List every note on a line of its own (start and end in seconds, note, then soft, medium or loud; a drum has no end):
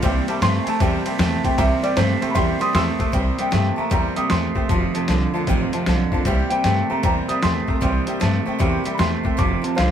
0.02 0.18 C2 loud
0.02 0.28 C3 medium
0.02 0.26 C3 medium
0.02 0.28 E3 medium
0.02 0.26 G3 loud
0.02 0.29 A#3 medium
0.02 0.28 C4 loud
0.02 0.26 G4 loud
0.02 0.18 C5 loud
0.02 0.19 E5 loud
0.02 0.19 G5 loud
0.02 kick loud
0.02 ride medium
0.28 0.41 C3 medium
0.28 0.41 G3 medium
0.28 0.41 A#3 soft
0.28 0.42 C4 medium
0.28 0.42 G4 medium
0.28 0.37 C5 medium
0.28 0.37 E5 medium
0.28 0.37 A5 loud
0.28 ride medium
0.41 0.57 G2 medium
0.41 0.65 C3 medium
0.41 0.67 E3 medium
0.41 0.65 A3 medium
0.41 0.68 A#3 medium
0.41 0.67 C4 medium
0.41 0.65 G4 medium
0.41 0.57 C5 medium
0.41 0.57 E5 medium
0.41 0.58 G5 medium
0.41 0.67 C6 loud
0.41 snare loud
0.41 ride medium
0.64 0.80 C3 medium
0.64 0.80 A3 medium
0.64 0.81 C4 medium
0.64 0.81 G4 medium
0.64 0.75 C5 medium
0.64 0.76 E5 medium
0.64 0.66 G#5 medium
0.64 0.76 A#5 medium
0.64 muted upright bass stroke medium
0.64 ride medium
0.69 0.81 A#3 soft
0.69 1.43 A5 loud
0.80 0.96 E2 medium
0.80 1.06 C3 medium
0.80 1.04 C3 medium
0.80 1.07 E3 medium
0.80 1.04 G3 loud
0.80 1.07 A#3 medium
0.80 1.05 C4 medium
0.80 1.04 G4 medium
0.80 0.96 C5 loud
0.80 0.96 E5 medium
0.80 0.96 G5 loud
0.80 kick loud
0.80 ride medium
1.05 1.18 C3 medium
1.05 1.19 G3 medium
1.05 1.19 A#3 soft
1.05 1.20 C4 medium
1.05 1.19 G4 medium
1.05 1.14 C5 medium
1.05 1.14 E5 medium
1.05 1.14 G5 medium
1.05 muted upright bass stroke medium
1.05 ride medium
1.19 1.35 E2 medium
1.19 1.42 C3 medium
1.19 1.45 E3 medium
1.19 1.42 A3 medium
1.19 1.45 A#3 medium
1.19 1.44 C4 medium
1.19 1.42 G4 medium
1.19 1.34 C5 medium
1.19 1.35 E5 medium
1.19 1.35 G5 medium
1.19 snare loud
1.19 ride medium
1.44 1.57 C3 medium
1.44 1.57 A3 medium
1.44 1.58 A#3 soft
1.44 1.58 C4 medium
1.44 1.58 G4 medium
1.44 1.53 C5 medium
1.44 1.53 E5 medium
1.44 1.58 G5 medium
1.44 1.53 G5 medium
1.44 muted upright bass stroke medium
1.44 kick medium
1.44 ride medium
1.58 1.73 C2 loud
1.58 1.84 C3 medium
1.58 1.81 C3 medium
1.58 1.84 E3 medium
1.58 1.81 G3 medium
1.58 1.84 A#3 medium
1.58 1.82 C4 medium
1.58 1.81 G4 medium
1.58 1.73 C5 loud
1.58 1.73 E5 medium
1.58 1.83 E5 loud
1.58 1.74 A#5 loud
1.58 kick loud
1.58 ride medium
1.82 1.96 C3 medium
1.82 1.96 G3 medium
1.82 1.96 A#3 soft
1.82 1.97 C4 soft
1.82 1.97 G4 medium
1.82 1.92 C5 medium
1.82 1.97 D5 medium
1.82 1.92 E5 medium
1.82 1.92 G5 medium
1.82 ride medium
1.96 2.13 G2 medium
1.96 2.20 C3 medium
1.96 2.22 E3 medium
1.96 2.20 A3 medium
1.96 2.23 A#3 medium
1.96 2.22 C4 medium
1.96 2.20 G4 medium
1.96 2.12 C5 medium
1.96 2.22 C5 loud
1.96 2.12 E5 medium
1.96 2.12 G5 medium
1.96 snare loud
1.96 ride medium
2.21 2.34 C3 medium
2.21 2.35 A3 medium
2.21 2.35 C4 medium
2.21 2.35 G4 medium
2.21 2.30 C5 medium
2.21 2.30 E5 medium
2.21 2.30 G5 medium
2.21 muted upright bass stroke medium
2.21 ride medium
2.25 2.34 A#3 soft
2.31 2.51 C5 loud
2.31 2.59 E5 medium
2.31 2.34 B5 medium
2.35 2.51 E2 medium
2.35 2.61 C3 medium
2.35 2.59 C3 medium
2.35 2.61 E3 medium
2.35 2.59 G3 medium
2.35 2.60 A#3 medium
2.35 2.59 C4 medium
2.35 2.58 G4 medium
2.35 2.51 E5 medium
2.35 2.51 G5 loud
2.35 2.59 C6 loud
2.35 kick loud
2.35 ride medium
2.59 2.74 C3 medium
2.59 2.74 G3 medium
2.59 2.73 A#3 medium
2.59 2.74 C4 medium
2.59 2.74 G4 medium
2.59 2.69 C5 medium
2.59 2.69 E5 medium
2.59 2.69 G5 medium
2.59 2.73 C6 medium
2.59 2.75 D#6 loud
2.59 muted upright bass stroke medium
2.59 ride medium
2.73 2.90 E2 loud
2.73 2.98 C3 medium
2.73 3.00 E3 medium
2.73 2.98 A3 loud
2.73 3.00 A#3 medium
2.73 2.99 C4 medium
2.73 2.98 G4 medium
2.73 2.89 C5 medium
2.73 2.90 E5 medium
2.73 2.90 G5 medium
2.73 3.11 C6 medium
2.73 3.13 E6 loud
2.73 snare loud
2.73 ride medium
2.99 3.12 C3 medium
2.99 3.13 A3 medium
2.99 3.13 A#3 soft
2.99 3.13 C4 medium
2.99 3.13 G4 medium
2.99 3.08 C5 medium
2.99 3.08 E5 medium
2.99 3.08 A5 medium
2.99 muted upright bass stroke medium
2.99 kick medium
2.99 ride medium
3.12 3.29 C2 medium
3.12 3.38 C3 medium
3.12 3.37 C3 medium
3.12 3.39 E3 medium
3.12 3.37 G3 medium
3.12 3.39 A#3 medium
3.12 3.38 C4 medium
3.12 3.37 G4 medium
3.12 3.28 C5 medium
3.12 3.28 E5 medium
3.12 3.29 G5 loud
3.12 kick loud
3.12 closed hi-hat medium
3.38 3.51 C3 medium
3.38 3.52 G3 medium
3.38 3.51 A#3 soft
3.38 3.51 C4 soft
3.38 3.52 G4 soft
3.38 3.47 C5 medium
3.38 3.47 E5 medium
3.38 3.48 G5 medium
3.38 3.51 G5 medium
3.38 muted upright bass stroke medium
3.38 closed hi-hat medium
3.51 3.69 G2 medium
3.51 3.76 C3 medium
3.51 3.77 E3 medium
3.51 3.76 A3 medium
3.51 3.78 A#3 medium
3.51 3.77 C4 medium
3.51 3.75 G4 medium
3.51 3.67 C5 medium
3.51 3.68 E5 medium
3.51 3.68 G5 medium
3.51 3.78 G5 medium
3.51 snare loud
3.51 closed hi-hat medium
3.74 3.90 C3 medium
3.74 3.91 G4 medium
3.74 3.86 C5 medium
3.74 3.76 A5 medium
3.78 3.91 A3 medium
3.78 3.90 A#3 soft
3.78 3.91 C4 soft
3.78 3.86 E5 medium
3.78 3.86 A5 medium
3.78 3.90 A#5 medium
3.78 muted upright bass stroke medium
3.90 4.07 E2 medium
3.90 4.16 C3 medium
3.90 4.14 C3 medium
3.90 4.17 E3 medium
3.90 4.15 G3 medium
3.90 4.17 A#3 medium
3.90 4.16 C4 medium
3.90 4.15 G4 medium
3.90 4.07 C5 medium
3.90 4.07 E5 medium
3.90 4.07 G5 loud
3.90 4.16 A#5 medium
3.90 kick loud
3.90 closed hi-hat medium
4.15 4.29 C3 medium
4.15 4.29 G3 medium
4.15 4.30 A#3 soft
4.15 4.31 C4 soft
4.15 4.30 G4 soft
4.15 4.25 C5 medium
4.15 4.25 E5 medium
4.15 4.25 G5 medium
4.15 4.30 D#6 medium
4.15 muted upright bass stroke medium
4.15 closed hi-hat medium
4.30 4.47 E2 medium
4.30 4.54 C3 medium
4.30 4.56 E3 medium
4.30 4.54 A3 medium
4.30 4.56 A#3 medium
4.30 4.55 C4 medium
4.30 4.54 G4 medium
4.30 4.46 C5 medium
4.30 4.46 E5 medium
4.30 4.46 G5 medium
4.30 5.06 C6 medium
4.30 snare loud
4.30 closed hi-hat medium
4.55 4.68 C3 medium
4.55 4.69 A3 medium
4.55 4.71 A#3 soft
4.55 4.70 C4 medium
4.55 4.69 G4 medium
4.55 4.64 C5 medium
4.55 4.64 E5 medium
4.55 4.64 G5 medium
4.55 muted upright bass stroke medium
4.55 kick medium
4.69 4.85 F1 medium
4.69 4.93 F2 medium
4.69 4.95 F2 medium
4.69 4.95 C3 medium
4.69 4.93 C3 medium
4.69 4.96 D#3 medium
4.69 4.95 A3 medium
4.69 4.94 C4 medium
4.69 4.93 F4 medium
4.69 4.85 C5 loud
4.69 4.85 F5 medium
4.69 4.85 A5 loud
4.69 kick loud
4.69 closed hi-hat medium
4.94 5.07 F2 medium
4.94 5.08 C3 medium
4.94 5.07 D#3 soft
4.94 5.08 A3 medium
4.94 5.09 C4 medium
4.94 5.09 F4 medium
4.94 5.03 C5 medium
4.94 5.03 F5 medium
4.94 5.03 A5 medium
4.94 muted upright bass stroke medium
4.94 closed hi-hat medium
5.08 5.24 C2 medium
5.08 5.32 F2 medium
5.08 5.32 D3 medium
5.08 5.34 D#3 medium
5.08 5.34 A3 medium
5.08 5.34 C4 medium
5.08 5.32 F4 medium
5.08 5.24 C5 medium
5.08 5.24 F5 medium
5.08 5.24 A5 loud
5.08 snare loud
5.08 closed hi-hat medium
5.33 5.46 F2 medium
5.33 5.47 D3 medium
5.33 5.48 D#3 medium
5.33 5.48 A3 medium
5.33 5.48 C4 medium
5.33 5.48 F4 medium
5.33 5.42 C5 medium
5.33 5.42 F5 medium
5.33 5.42 A5 medium
5.47 5.63 A1 medium
5.47 5.71 F2 medium
5.47 5.74 F2 medium
5.47 5.71 C3 medium
5.47 5.74 C3 medium
5.47 5.74 D#3 loud
5.47 5.73 A3 medium
5.47 5.73 C4 loud
5.47 5.71 F4 medium
5.47 5.63 C5 loud
5.47 5.63 F5 loud
5.47 5.63 G5 loud
5.47 kick loud
5.47 closed hi-hat medium
5.73 5.86 F2 medium
5.73 5.86 C3 medium
5.73 5.85 D#3 soft
5.73 5.86 A3 medium
5.73 5.87 C4 medium
5.73 5.87 F4 medium
5.73 5.81 C5 medium
5.73 5.82 F5 medium
5.73 5.82 A5 medium
5.73 muted upright bass stroke medium
5.73 closed hi-hat medium
5.86 6.02 B1 medium
5.86 6.10 F2 medium
5.86 6.10 D3 medium
5.86 6.12 D#3 medium
5.86 6.13 A3 medium
5.86 6.12 C4 medium
5.86 6.11 F4 medium
5.86 6.02 C5 medium
5.86 6.03 F5 medium
5.86 6.03 A5 medium
5.86 snare loud
5.86 closed hi-hat medium
6.12 6.25 F2 medium
6.12 6.25 D3 medium
6.12 6.26 D#3 medium
6.12 6.26 A3 medium
6.12 6.26 C4 medium
6.12 6.26 F4 medium
6.12 6.21 C5 medium
6.12 6.21 F5 medium
6.12 6.21 A5 medium
6.12 muted upright bass stroke medium
6.12 kick medium
6.25 6.41 C2 medium
6.25 6.51 C3 medium
6.25 6.49 C3 medium
6.25 6.52 E3 medium
6.25 6.49 G3 medium
6.25 6.52 A#3 medium
6.25 6.51 C4 medium
6.25 6.50 G4 loud
6.25 6.41 C5 loud
6.25 6.42 E5 loud
6.25 6.42 G5 loud
6.25 kick loud
6.25 closed hi-hat medium
6.50 6.64 C3 medium
6.50 6.64 G3 medium
6.50 6.64 A#3 soft
6.50 6.65 C4 soft
6.50 6.65 G4 medium
6.50 6.60 C5 medium
6.50 6.60 E5 medium
6.50 6.62 G5 loud
6.50 6.60 G5 medium
6.50 muted upright bass stroke medium
6.50 closed hi-hat medium
6.63 6.80 G2 medium
6.63 6.88 C3 medium
6.63 6.90 E3 medium
6.63 6.88 A3 medium
6.63 6.91 A#3 medium
6.63 6.90 C4 medium
6.63 6.88 G4 medium
6.63 6.80 C5 medium
6.63 6.80 E5 medium
6.63 6.89 G5 medium
6.63 6.81 A5 medium
6.63 snare loud
6.63 closed hi-hat medium
6.85 6.88 A5 soft
6.90 7.03 C3 medium
6.90 7.03 A3 medium
6.90 7.02 A#3 soft
6.90 7.03 C4 medium
6.90 7.03 G4 medium
6.90 6.99 C5 medium
6.90 6.99 E5 medium
6.90 6.99 A5 medium
6.90 7.02 A#5 medium
6.90 muted upright bass stroke medium
7.03 7.19 E2 medium
7.03 7.29 C3 medium
7.03 7.27 C3 medium
7.03 7.29 E3 medium
7.03 7.28 G3 medium
7.03 7.29 A#3 medium
7.03 7.29 C4 medium
7.03 7.27 G4 medium
7.03 7.19 C5 loud
7.03 7.20 E5 medium
7.03 7.20 G5 loud
7.03 7.29 A#5 medium
7.03 kick loud
7.03 closed hi-hat medium
7.28 7.42 C3 medium
7.28 7.42 G3 medium
7.28 7.41 A#3 soft
7.28 7.43 C4 medium
7.28 7.43 G4 medium
7.28 7.37 C5 medium
7.28 7.38 E5 medium
7.28 7.38 G5 medium
7.28 7.42 D#6 medium
7.28 muted upright bass stroke medium
7.28 closed hi-hat medium
7.42 7.59 E2 medium
7.42 7.66 C3 medium
7.42 7.68 E3 medium
7.42 7.66 A3 medium
7.42 7.69 A#3 medium
7.42 7.66 G4 medium
7.42 7.59 C5 medium
7.42 7.59 E5 medium
7.42 7.59 G5 medium
7.42 8.19 C6 medium
7.42 snare loud
7.42 closed hi-hat medium
7.67 7.80 C3 medium
7.67 7.81 A3 medium
7.67 7.80 A#3 soft
7.67 7.81 C4 medium
7.67 7.81 G4 medium
7.67 7.77 C5 medium
7.67 7.77 E5 medium
7.67 7.77 A#5 medium
7.67 muted upright bass stroke medium
7.67 kick medium
7.81 7.98 C2 medium
7.81 8.07 C3 medium
7.81 8.05 C3 medium
7.81 8.07 E3 medium
7.81 8.05 G3 medium
7.81 8.08 A#3 medium
7.81 8.07 C4 medium
7.81 8.05 G4 medium
7.81 7.98 C5 loud
7.81 7.98 E5 medium
7.81 7.98 G5 loud
7.81 kick loud
7.81 closed hi-hat medium
8.07 8.20 C3 medium
8.07 8.20 G3 medium
8.07 8.19 A#3 soft
8.07 8.21 C4 medium
8.07 8.21 G4 medium
8.07 8.16 C5 medium
8.07 8.16 E5 medium
8.07 8.16 G5 medium
8.07 closed hi-hat medium
8.20 8.38 G2 medium
8.20 8.44 C3 medium
8.20 8.46 E3 medium
8.20 8.45 A3 medium
8.20 8.47 A#3 medium
8.20 8.46 C4 medium
8.20 8.44 G4 medium
8.20 8.36 C5 medium
8.20 8.37 E5 medium
8.20 8.37 A5 loud
8.20 snare loud
8.20 closed hi-hat medium
8.46 8.59 C3 medium
8.46 8.59 A3 medium
8.46 8.58 A#3 soft
8.46 8.59 C4 medium
8.46 8.59 G4 medium
8.46 8.55 C5 medium
8.46 8.55 E5 medium
8.46 8.55 G5 medium
8.46 muted upright bass stroke medium
8.59 8.76 E2 medium
8.59 8.85 C3 medium
8.59 8.84 C3 medium
8.59 8.86 E3 medium
8.59 8.84 G3 medium
8.59 8.86 A#3 medium
8.59 8.84 C4 medium
8.59 8.83 G4 loud
8.59 8.75 C5 loud
8.59 8.75 E5 loud
8.59 8.76 G5 loud
8.59 kick loud
8.59 closed hi-hat medium
8.84 8.98 C3 medium
8.84 8.99 G3 medium
8.84 8.98 A#3 medium
8.84 8.98 C4 medium
8.84 8.99 G4 medium
8.84 8.94 C5 medium
8.84 8.94 E5 medium
8.84 8.94 G5 medium
8.84 muted upright bass stroke medium
8.84 closed hi-hat medium
8.94 9.24 E3 medium
8.94 8.98 B5 medium
8.99 9.15 E2 medium
8.99 9.23 C3 medium
8.99 9.23 A3 medium
8.99 9.25 A#3 medium
8.99 9.23 C4 medium
8.99 9.22 G4 medium
8.99 9.15 C5 medium
8.99 9.15 E5 medium
8.99 9.15 G5 medium
8.99 9.38 C6 medium
8.99 snare loud
8.99 closed hi-hat medium
9.23 9.38 C3 medium
9.23 9.38 A3 medium
9.23 9.38 A#3 soft
9.23 9.37 C4 soft
9.23 9.38 G4 medium
9.23 9.33 C5 medium
9.23 9.33 E5 medium
9.23 9.34 G5 medium
9.23 kick medium
9.37 9.54 F1 medium
9.37 9.64 F2 medium
9.37 9.62 F2 medium
9.37 9.64 C3 medium
9.37 9.62 C3 medium
9.37 9.64 D#3 medium
9.37 9.63 A3 medium
9.37 9.62 C4 medium
9.37 9.60 F4 medium
9.37 9.54 C5 loud
9.37 9.54 F5 medium
9.37 9.54 A5 loud
9.37 9.64 D6 medium
9.37 kick loud
9.37 closed hi-hat medium
9.62 9.76 F2 medium
9.62 9.77 C3 medium
9.62 9.74 D#3 soft
9.62 9.76 A3 soft
9.62 9.76 C4 soft
9.62 9.77 F4 medium
9.62 9.72 C5 medium
9.62 9.72 F5 medium
9.62 9.78 A5 medium
9.62 9.73 A5 medium
9.62 closed hi-hat medium
9.75 9.91 C2 medium
9.75 9.91 F2 medium
9.75 9.91 D3 medium
9.75 9.91 D#3 medium
9.75 9.91 A3 medium
9.75 9.91 C4 medium
9.75 9.91 F4 medium
9.75 9.91 C5 medium
9.75 9.91 F5 loud
9.75 9.91 F5 medium
9.75 9.91 C6 medium
9.75 snare loud
9.75 closed hi-hat medium